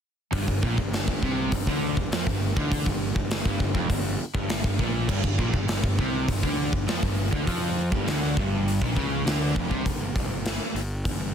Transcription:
0.32 G1 G2, kick, open hi-hat
0.47 G1 G2, kick
0.62 A#1 A#2, kick
0.78 G1 G2, kick
0.92 G1 G2, snare, open hi-hat
1.08 G1 G2, kick
1.22 C2 C3, kick
1.52 G1 G2, kick, open hi-hat
1.67 D2 D3, kick
1.97 G1 G2, kick
2.12 F2 F3, snare, open hi-hat
2.26 G1 G2, kick
2.56 D2 D3, kick
2.72 kick, open hi-hat
2.86 G1 G2, kick
3.16 G1 G2, kick
3.31 snare, open hi-hat
3.45 G1 G2, kick
3.60 G1 G2, kick
3.74 F1 F2, kick
3.89 G1 G2, kick, open hi-hat
4.34 G1 G2, kick
4.49 snare, open hi-hat
4.64 G1 G2, kick
4.79 A#1 A#2, kick
5.09 G1 G2, kick, crash
5.24 G1 G2, kick
5.39 A#1 A#2, kick
5.53 G1 G2, kick
5.68 G1 G2, snare, open hi-hat
5.83 G1 G2, kick
5.98 C2 C3, kick
6.28 G1 G2, kick, open hi-hat
6.43 D2 D3, kick
6.73 G1 G2, kick
6.88 F2 F3, snare, open hi-hat
7.03 G1 G2, kick
7.32 D2 D3, kick
7.47 F2 F3, kick, open hi-hat
7.91 G1 G2, kick
8.07 D2 D3, snare, open hi-hat
8.37 G1 G2, kick
8.68 open hi-hat
8.81 A#1 A#2, kick
8.96 C#2 C#3, kick
9.25 D2 D3, snare, open hi-hat
9.54 F1 F2, kick
9.70 C2 C3, kick
9.86 G1, kick, open hi-hat
9.99 G1
10.16 C2, kick, open hi-hat
10.30 G1
10.46 snare, open hi-hat
10.74 G1, open hi-hat
11.05 G1, kick, open hi-hat
11.20 G1

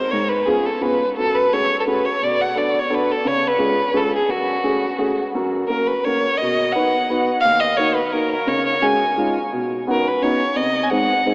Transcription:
Already playing: C5
0.11 G#2 C#5
0.29 B4
0.46 B3 C#4 F4 G#4
0.66 A4
0.81 B3 C#4 F4 G#4 B4
1.17 F#2 A4
1.35 B4
1.53 A3 C#4 F#4 G#4 C#5
1.80 A4
1.87 A3 C#4 F#4 G#4 B4
2.05 C#5
2.22 B2 D5
2.41 F#5
2.55 B3 D4 F#4 A4 D5
2.79 C#5
2.90 B3 D4 F#4 A4
2.95 B4
3.12 A4
3.25 C#3 C#5
3.47 B4
3.58 G#3 C#4 F4 G#4
3.94 G#3 C#4 F4 G#4 A4
4.16 G#4
4.29 F#2 F#4
4.64 A3 C#4 F#4 G#4
4.98 A3 C#4 F#4 G#4
5.35 F#2
5.68 A#3 C#4 F#4 A#4
5.87 B4
6.04 A#3 C#4 F#4 A#4 C#5
6.37 D#5
6.41 B2
6.72 B3 D#4 F#4 B4 F#5
7.10 B3 D#4 F#4 B4
7.41 F5
7.45 D#2
7.60 D#5
7.77 A#3 D#4 F#4 A#4 C#5
7.95 B4
8.13 A#3 D#4 F#4 A#4
8.32 A#4
8.47 C#3 C#5
8.66 C#5
8.82 G#3 C#4 F#4 G#4 G#5
9.17 G#3 C#4 D#4 F4
9.52 B2
9.87 B3 C#4 D#4 F#4 A#4
10.07 B4
10.22 B3 C#4 D#4 F#4 C#5
10.56 C3 D#5
10.84 G#5
10.90 G#3 C4 D#4 G#4 F#5
11.26 G#3 C4 D#4 G#4

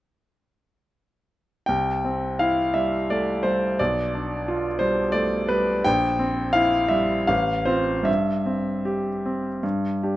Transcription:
1.66 C2 G5
2.05 C4
2.39 E4 F5
2.74 G3 E5
3.10 A3 D5
3.43 G3 C5
3.79 B1 D5
4.14 D4
4.48 F4
4.79 G3 C5
5.12 A3 D5
5.49 G3 B4
5.84 A#1 G5
6.19 C4
6.53 E4 F5
6.88 G3 E5
7.27 A1 F5
7.65 C4 F4 C5
8.03 G2 E5
8.46 C4
8.85 G4
9.26 C4
9.63 G2
10.03 D4 G4

